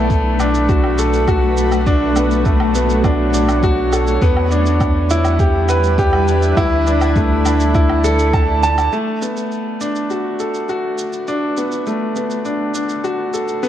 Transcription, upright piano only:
Already playing: A3 B3
0.40 D4
0.69 F#4
0.99 A4
1.28 F#4
1.87 D4
2.16 B3
2.46 A3
2.75 B3
3.04 D4
3.34 D4
3.63 F#4
3.93 A4
4.22 B3
4.52 D4
5.11 E4
5.40 G4
5.69 B4
5.99 G4
6.57 E4
6.87 D4
7.16 A3
7.45 D4
7.75 E4
8.04 A4
8.34 A5
8.63 A5
8.93 A3
9.22 B3
9.81 D4
10.10 F#4
10.40 A4
10.69 F#4
11.28 D4
11.58 B3
11.87 A3
12.16 B3
12.45 D4
12.75 D4
13.04 F#4
13.34 A4
13.63 B3

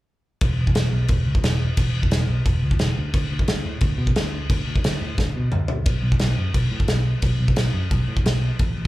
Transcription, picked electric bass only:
0.42 E1
0.59 E1
0.75 E1
0.92 B1
1.09 E1
1.25 C#2
1.43 E1
1.78 E1
1.92 E1
2.10 E1
2.27 B1
2.45 E1
2.62 C#2
2.80 E1
2.98 D2
3.14 D2
3.31 D2
3.48 D2
3.65 A2
3.82 D2
3.98 B2
4.17 D2
4.50 D2
4.67 D2
4.85 D2
5.01 A2
5.18 D2
5.36 B2
5.53 D2
5.86 B1
6.02 B1
6.21 B1
6.38 F#2
6.54 B1
6.71 A2
6.88 B1
7.22 B1
7.39 B1
7.57 B1
7.73 F#2
7.91 B1
8.08 A2
8.24 B1
8.60 A1
8.77 A1

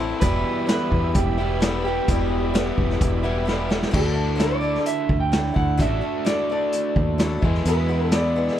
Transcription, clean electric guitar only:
0.20 B4
0.69 B4
1.15 G4
1.84 G4
3.95 A4
4.40 D5
4.86 E5
5.20 G5
5.56 F#5
5.81 E5
6.25 D5
6.51 D5
7.67 B4
8.14 D5

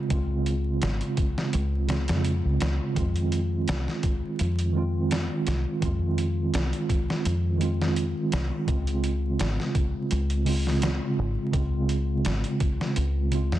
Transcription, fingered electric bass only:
0.11 C#2
0.83 G#1
1.54 C#2
2.09 F2
2.45 C#2
2.62 C#2
2.97 F2
3.69 C2
4.40 F2
5.47 C2
5.83 F2
6.54 C2
7.26 F2
8.33 C2
8.68 C#2
9.40 G#1
10.12 C#2
11.19 G#1
11.54 C#2
12.25 G#1
12.97 C#2
13.52 F2

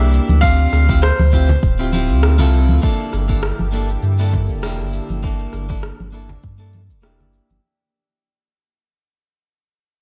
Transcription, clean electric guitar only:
Already playing: A#3 D4 E4 G4
0.42 C4 D4 F4 G4
0.89 C4 E4 F4 G4
1.33 C4 E4 F4 G4
1.79 C4 E4 F4 G4
1.93 C4 E4 F4 G4
2.39 C4 E4 F4 A4
2.82 A#3 D4 E4 A4
3.28 A#3 D4 E4 A4
3.72 A#3 D4 E4 A4
4.19 A#3 D4 E4 A4
4.63 A#3 D4 E4 G4
5.23 A#3 D4 E4 A4
5.69 A#3 D4 E4 A4
6.12 A#3 D4 E4 A4
6.58 A#3 D4 E4 A4
7.02 A#3 D4 E4 G4

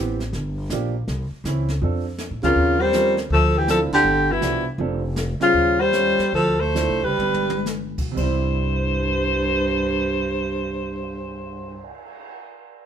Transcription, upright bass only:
Already playing: A1
0.33 G1
0.70 A#1
1.08 C2
1.31 muted upright bass stroke
1.44 C#2
1.81 F2
2.31 A2
2.43 D2
2.56 D#2
3.30 D2
3.90 D2
4.04 G1
4.41 C2
4.78 F1
5.54 D#2
6.18 muted upright bass stroke
6.32 D2
6.89 C2
7.03 F#1
7.18 G1
7.98 B1
8.17 C2

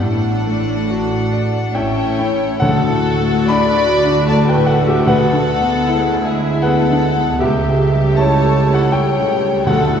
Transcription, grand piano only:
0.01 A2
0.47 A3
0.90 F#4
1.33 D5
1.75 A2 C#5 G5
2.19 C#4 E4
2.60 D2 A4 F#5
2.90 A2
3.20 A3
3.48 D4 D5 B5
3.76 F#4
4.04 D4
4.28 A3 D5 A5
4.49 B4 G5
4.55 A2
4.66 A4 F#5
4.82 A3
4.87 G4 E5
5.06 D2 B4 F#5
5.32 D3
5.61 B3
5.87 E4
6.13 G#4
6.24 G#4 E5
6.40 E4
6.62 B3 B4 F#5
6.91 D3
7.17 B3
7.41 C#2 G4 E5
7.68 C#3
7.93 G3
8.17 E4 C#5 A5
8.44 A4
8.68 E4
8.74 A4 F#5
8.91 G3 C#5 G5
9.20 C#3
9.42 G3
9.66 D2 A4 F#5
9.91 A2

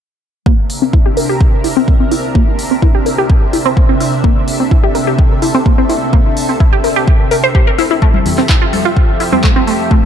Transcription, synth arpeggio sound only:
0.46 A#3
0.82 C4
0.93 E4
1.06 G4
1.17 A#4
1.29 G4
1.64 E4
1.77 C4
1.88 A#3
2.00 C4
2.12 E4
2.35 A#3
2.71 C4
2.82 E4
2.95 G4
3.06 A#4
3.18 G4
3.53 E4
3.66 C4
3.77 A#3
3.89 C4
4.00 E4
4.24 A#3
4.60 C4
4.71 E4
4.84 G4
4.95 A#4
5.07 G4
5.42 E4
5.55 C4
5.66 A#3
5.78 C4
5.89 E4
6.13 A#3
6.49 C4
6.60 E4
6.73 G4
6.84 A#4
6.96 G4
7.31 A#4
7.44 C5
7.55 G4
7.67 A#4
7.79 E4
7.91 E4
8.02 A3
8.38 C4
8.49 E4
8.62 F4
8.73 A4
8.85 F4
9.20 E4
9.33 C4
9.44 A3
9.56 C4
9.67 A3
9.91 A3

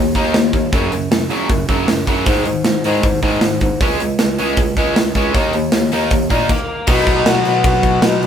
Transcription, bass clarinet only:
Already playing: D#2
0.15 D#2
0.34 D#2
0.53 D#2
0.73 F#2
0.92 F#2
1.11 F#2
1.49 F#2
1.69 F#2
1.89 F#2
2.07 F#2
2.26 G#2
2.46 G#2
2.65 G#2
2.84 G#2
3.03 G#2
3.22 G#2
3.43 G#2
3.61 G#2
3.81 C#2
4.00 C#2
4.20 C#2
4.40 C#2
4.58 C#2
4.77 C#2
4.97 C#2
5.15 C#2
5.34 D#2
5.54 D#2
5.73 D#2
5.93 D#2
6.11 D#2
6.30 A#2
6.88 B2
7.26 B2
7.45 B2
7.64 B2
8.02 B2
8.21 B2

